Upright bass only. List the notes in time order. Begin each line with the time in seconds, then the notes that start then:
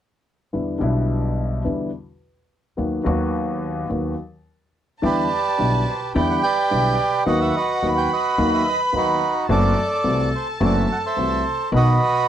0.54 E2
0.81 B1
1.66 E2
2.78 D#2
3.06 D#2
3.90 D#2
5.03 E2
5.60 B1
6.15 E2
6.72 B1
7.27 D#2
7.83 D#2
8.38 D#2
8.93 D#2
9.49 F#1
10.05 C2
10.60 F#1
11.17 C2
11.72 B1